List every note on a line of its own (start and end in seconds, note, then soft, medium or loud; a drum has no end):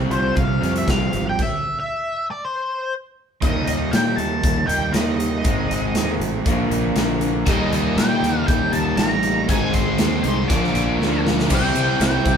0.00 0.60 C3 medium
0.00 0.62 C3 medium
0.00 0.60 G3 medium
0.00 0.61 G3 soft
0.00 0.35 C4 medium
0.00 0.61 C4 soft
0.00 0.60 G4 soft
0.00 0.59 C5 medium
0.10 0.31 C2 medium
0.10 1.38 F4 medium
0.10 0.38 C5 medium
0.10 closed hi-hat soft
0.36 0.57 C2 medium
0.36 1.38 C4 medium
0.36 0.72 F5 medium
0.36 kick medium
0.36 closed hi-hat medium
0.60 0.83 F2 medium
0.60 1.12 C3 medium
0.60 1.12 G3 medium
0.60 0.85 G3 soft
0.60 0.86 C4 soft
0.60 0.87 G4 soft
0.60 0.87 C5 medium
0.60 closed hi-hat soft
0.76 0.90 E5 medium
0.76 closed hi-hat medium
0.86 1.08 C2 medium
0.86 1.38 F3 medium
0.86 1.12 G3 medium
0.86 1.12 C4 medium
0.86 1.11 G4 medium
0.86 1.09 C5 medium
0.86 1.28 F5 medium
0.86 kick medium
0.86 snare medium
0.86 closed hi-hat medium
1.10 1.34 G#1 medium
1.10 1.38 G3 medium
1.10 1.39 G3 soft
1.10 1.39 C4 soft
1.10 1.38 G4 soft
1.10 1.37 C5 soft
1.10 closed hi-hat medium
1.29 1.41 G5 medium
1.39 1.78 E5 medium
1.39 kick medium
1.39 crash medium
1.80 2.25 E5 medium
2.31 2.45 D5 medium
2.45 2.93 C5 medium
3.41 3.66 D#2 medium
3.41 4.67 D#3 medium
3.41 3.92 D#3 medium
3.41 4.67 G3 medium
3.41 3.90 G3 medium
3.41 4.67 A#3 loud
3.41 3.92 D#4 medium
3.41 4.66 D#4 loud
3.41 3.93 G4 medium
3.41 3.93 A#4 medium
3.41 3.67 D#5 medium
3.41 kick loud
3.41 closed hi-hat medium
3.67 3.91 D#2 medium
3.67 3.94 D#5 medium
3.67 closed hi-hat medium
3.91 4.16 A#2 medium
3.91 4.17 G3 medium
3.91 4.18 D#4 medium
3.91 4.19 G4 soft
3.91 4.16 A#4 medium
3.91 4.18 G5 loud
3.91 snare loud
3.91 closed hi-hat medium
4.16 4.41 D#2 medium
4.16 4.44 G4 soft
4.16 4.43 A#4 soft
4.16 4.69 A5 loud
4.16 closed hi-hat medium
4.21 4.43 D#4 soft
4.43 4.67 D#2 medium
4.43 4.94 D#3 medium
4.43 4.92 G3 medium
4.43 4.93 D#4 medium
4.43 4.94 G4 medium
4.43 4.95 A#4 medium
4.43 kick loud
4.43 closed hi-hat medium
4.67 4.92 D#2 medium
4.67 4.91 D#3 medium
4.67 4.93 G3 medium
4.67 4.92 A#3 medium
4.67 4.92 D#4 medium
4.67 4.94 G5 medium
4.67 closed hi-hat medium
4.92 5.41 D#2 medium
4.92 5.42 D#3 medium
4.92 5.19 G3 medium
4.92 5.43 G3 medium
4.92 5.43 A#3 medium
4.92 5.19 D#4 medium
4.92 5.43 D#4 medium
4.92 5.17 G4 medium
4.92 5.15 A#4 medium
4.92 5.15 D#5 medium
4.92 snare loud
4.92 closed hi-hat medium
5.16 5.43 D#4 soft
5.16 5.44 G4 soft
5.16 5.43 A#4 medium
5.16 6.15 D#5 medium
5.20 closed hi-hat medium
5.42 5.68 G#1 medium
5.42 6.44 G#2 loud
5.42 6.44 D#3 medium
5.42 5.92 G#3 medium
5.42 6.45 G#3 loud
5.42 6.45 C4 loud
5.42 5.93 D#4 medium
5.42 5.95 G#4 medium
5.42 5.95 C5 medium
5.42 kick loud
5.42 closed hi-hat medium
5.47 6.45 D#4 loud
5.71 5.94 G#1 medium
5.71 closed hi-hat medium
5.94 6.18 D#2 medium
5.94 6.20 G#3 medium
5.94 6.20 D#4 medium
5.94 6.21 G#4 medium
5.94 6.20 C5 medium
5.94 snare loud
5.94 closed hi-hat medium
6.20 6.44 A1 medium
6.20 6.46 G#4 soft
6.20 6.46 C5 medium
6.20 closed hi-hat medium
6.24 6.46 D#4 soft
6.44 6.69 A#1 medium
6.44 6.96 A#2 medium
6.44 7.45 A#2 medium
6.44 7.45 D3 medium
6.44 6.96 F3 medium
6.44 7.46 F3 medium
6.44 6.94 A#3 medium
6.44 7.46 A#3 medium
6.44 6.95 D4 medium
6.44 7.46 D4 medium
6.44 6.96 F4 medium
6.44 6.96 A#4 medium
6.44 kick loud
6.44 closed hi-hat medium
6.71 6.94 A#1 medium
6.71 closed hi-hat medium
6.96 7.43 A#1 medium
6.96 7.21 A#3 medium
6.96 7.21 D4 medium
6.96 7.20 F4 medium
6.96 7.19 A#4 medium
6.96 snare loud
6.96 closed hi-hat medium
7.20 7.46 A#3 soft
7.20 7.46 D4 medium
7.20 7.47 F4 medium
7.20 7.46 A#4 medium
7.20 closed hi-hat medium
7.45 7.70 D#2 medium
7.45 7.97 D#3 medium
7.45 8.71 D#3 loud
7.45 7.94 G3 medium
7.45 8.72 G3 loud
7.45 8.72 A#3 loud
7.45 7.96 D#4 loud
7.45 8.71 D#4 loud
7.45 7.97 G4 loud
7.45 7.98 A#4 loud
7.45 kick loud
7.45 closed hi-hat medium
7.49 7.73 D#5 medium
7.72 7.95 D#2 medium
7.72 7.99 D#5 medium
7.72 closed hi-hat medium
7.96 8.20 A#2 loud
7.96 8.47 G3 medium
7.96 8.47 D#4 medium
7.96 8.47 G4 medium
7.96 8.47 A#4 medium
7.96 8.47 G5 medium
7.96 snare loud
7.96 closed hi-hat medium
8.23 8.46 D#2 medium
8.23 closed hi-hat medium
8.47 8.72 D#2 loud
8.47 8.98 D#3 medium
8.47 8.96 G3 medium
8.47 8.98 D#4 medium
8.47 8.99 G4 medium
8.47 8.99 A#4 medium
8.47 8.74 G5 medium
8.47 kick loud
8.47 closed hi-hat medium
8.72 8.96 D#2 medium
8.72 8.97 D#3 medium
8.72 8.97 G3 medium
8.72 8.97 A#3 medium
8.72 8.97 D#4 medium
8.72 8.97 A5 medium
8.72 closed hi-hat medium
8.97 9.45 A1 loud
8.97 9.47 D#3 medium
8.97 9.23 G3 medium
8.97 9.47 G3 medium
8.97 9.48 A#3 medium
8.97 9.24 D#4 medium
8.97 9.48 D#4 medium
8.97 9.24 G4 medium
8.97 9.22 A#4 medium
8.97 9.45 A#5 medium
8.97 snare loud
8.97 closed hi-hat medium
9.23 9.49 D#4 soft
9.23 9.50 G4 medium
9.23 9.49 A#4 medium
9.23 closed hi-hat medium
9.48 9.72 G#1 medium
9.48 10.48 G#2 loud
9.48 10.48 D#3 loud
9.48 10.48 G#3 loud
9.48 9.98 G#3 medium
9.48 10.48 C4 loud
9.48 10.49 D#4 loud
9.48 9.99 D#4 medium
9.48 10.00 G#4 loud
9.48 10.01 C5 loud
9.48 9.73 G#5 loud
9.48 kick medium
9.48 closed hi-hat medium
9.74 9.98 G#1 medium
9.74 10.22 C6 medium
9.74 kick medium
9.74 closed hi-hat medium
9.98 10.22 D#2 loud
9.98 10.24 G#3 medium
9.98 10.24 C5 medium
9.98 snare loud
9.98 closed hi-hat loud
10.23 10.48 C2 medium
10.23 10.51 G#4 medium
10.23 10.50 C5 medium
10.23 10.48 C6 loud
10.23 closed hi-hat medium
10.28 10.51 D#4 soft
10.49 10.73 A#1 medium
10.49 11.48 A#2 medium
10.49 11.01 A#2 medium
10.49 11.48 D3 medium
10.49 11.49 F3 loud
10.49 11.01 F3 medium
10.49 11.49 A#3 loud
10.49 10.98 A#3 medium
10.49 11.50 D4 loud
10.49 11.21 D6 loud
10.49 kick loud
10.49 closed hi-hat medium
10.53 10.99 D4 medium
10.53 11.01 F4 medium
10.53 11.02 A#4 medium
10.64 snare soft
10.74 10.97 A#1 medium
10.74 closed hi-hat medium
10.99 11.46 D2 loud
10.99 11.25 A#3 medium
10.99 11.25 D4 medium
10.99 11.26 F4 medium
10.99 snare medium
11.03 11.24 A#4 medium
11.25 11.51 D4 medium
11.25 11.51 F4 medium
11.25 11.50 A#4 medium
11.25 snare medium
11.30 11.50 A#3 soft
11.39 snare medium
11.49 11.69 C2 medium
11.49 12.00 C3 loud
11.49 12.25 C3 medium
11.49 12.25 E3 loud
11.49 11.98 G3 loud
11.49 12.26 G3 medium
11.49 11.77 C4 loud
11.49 12.26 C4 loud
11.49 11.75 E4 loud
11.49 12.25 E4 medium
11.49 11.74 G4 loud
11.49 12.24 C5 loud
11.49 kick medium
11.49 crash loud
11.49 shaker loud
11.54 12.01 G5 medium
11.75 11.93 C3 medium
11.75 12.00 C4 medium
11.75 12.00 E4 medium
11.75 12.00 G4 medium
11.75 ride medium
11.75 shaker medium
12.00 12.18 C2 loud
12.00 12.37 G3 medium
12.00 12.26 C4 medium
12.00 12.25 E4 medium
12.00 12.23 G4 medium
12.00 12.37 G5 medium
12.00 snare loud
12.00 ride loud
12.00 shaker medium
12.24 12.37 C2 medium
12.24 12.37 G3 soft
12.24 12.37 C4 soft
12.24 12.37 C4 medium
12.24 12.37 E4 medium
12.24 12.37 G4 medium
12.24 12.37 C5 medium
12.24 kick medium
12.24 ride medium
12.24 shaker medium